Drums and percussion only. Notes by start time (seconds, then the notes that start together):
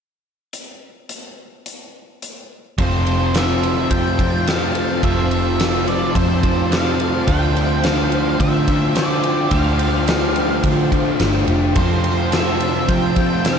0.53 closed hi-hat
1.09 closed hi-hat
1.66 closed hi-hat
2.22 closed hi-hat
2.78 kick, ride
3.07 ride
3.34 snare, ride
3.63 ride
3.91 kick, ride
4.19 kick, ride
4.47 snare, ride
4.75 ride
5.03 kick, ride
5.31 ride
5.60 snare, ride
5.87 ride
6.15 kick, ride
6.43 kick, ride
6.72 snare, ride
7.00 ride
7.28 kick, ride
7.57 ride
7.84 snare, ride
8.12 ride
8.40 kick, ride
8.68 kick, ride
8.95 snare, ride
9.24 ride
9.51 kick, ride
9.79 ride
10.08 snare, ride
10.36 ride
10.63 kick, ride
10.92 kick, ride
11.20 snare, ride
11.48 ride
11.76 kick, ride
12.04 ride
12.32 snare, ride
12.60 ride
12.88 kick, ride
13.16 kick, ride
13.45 snare, ride